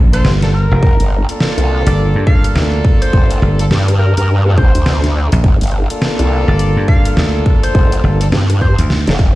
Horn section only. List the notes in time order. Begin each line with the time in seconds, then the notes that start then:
0.13 A#3 D4 F4 A4
0.42 A#3 D4 F4 A4
1.29 A#3 D4 F4 A4
2.26 A#3 D4 F4 A4
3.59 A#3 D4 F4 A4
4.46 A#3 D4 F4 A4
5.90 A#3 D4 F4 A4
6.88 A#3 D4 F4 A4
8.21 A#3 D4 F4 A4
9.07 A#3 D4 F4 A4